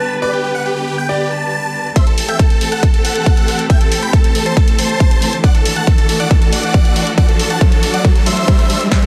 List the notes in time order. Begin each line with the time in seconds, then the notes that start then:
Already playing: D3 G3 B3 G4 B4 A5
0.22 B4 D5
0.33 G4
0.44 G4
0.55 F#5
0.66 G4
0.76 G4
0.87 G4
0.98 G5
1.09 G4 D5
1.20 G4
1.31 A5
1.96 E3 A3 C4 G4 A4 C5 E5, kick, closed hi-hat, riser
2.07 A4, closed hi-hat
2.18 A4, open hi-hat
2.28 E5 G5, closed hi-hat
2.39 A4, kick, closed hi-hat
2.50 A4, closed hi-hat
2.61 A4, open hi-hat
2.72 A4 F#5, closed hi-hat
2.83 A4, kick, closed hi-hat
2.94 A4, closed hi-hat
3.05 A4 F#5, open hi-hat
3.15 closed hi-hat
3.26 kick, closed hi-hat
3.37 closed hi-hat
3.48 open hi-hat
3.59 closed hi-hat
3.70 E5 G5, kick, closed hi-hat
3.81 A4, closed hi-hat
3.92 A4, open hi-hat
4.02 G5 B5, closed hi-hat
4.13 A4, kick, closed hi-hat
4.24 A4, closed hi-hat
4.35 A4, open hi-hat
4.46 C5 A5, closed hi-hat
4.57 A4, kick, closed hi-hat
4.68 A4, closed hi-hat
4.78 C5 A5, open hi-hat
4.89 closed hi-hat
5.00 kick, closed hi-hat
5.11 closed hi-hat
5.22 open hi-hat
5.33 closed hi-hat
5.44 D4 F#4 A4 D5 F#5, kick, closed hi-hat
5.55 A4, closed hi-hat
5.65 A4, open hi-hat
5.76 F#5 A5, closed hi-hat
5.87 A4, kick, closed hi-hat
5.98 A4, closed hi-hat
6.09 A4, open hi-hat
6.20 D5 F#5, closed hi-hat
6.31 A4, kick, closed hi-hat
6.42 A4, closed hi-hat
6.52 D5 F#5, open hi-hat
6.63 closed hi-hat
6.74 kick, closed hi-hat
6.85 closed hi-hat
6.96 open hi-hat
7.07 closed hi-hat
7.18 D5 F#5, kick, closed hi-hat
7.29 A4, closed hi-hat
7.39 A4, open hi-hat
7.50 F#5 A5, closed hi-hat
7.61 A4, kick, closed hi-hat
7.72 A4, closed hi-hat
7.83 A4, open hi-hat
7.94 D5 F#5, closed hi-hat
8.05 A4, kick, closed hi-hat
8.15 A4, closed hi-hat
8.26 C5 E5, open hi-hat
8.37 closed hi-hat
8.48 kick, closed hi-hat
8.59 closed hi-hat
8.70 open hi-hat
8.81 closed hi-hat
8.92 E3 A3 C4 G4 A4 C5 E5, kick, snare, closed hi-hat
9.02 A4, closed hi-hat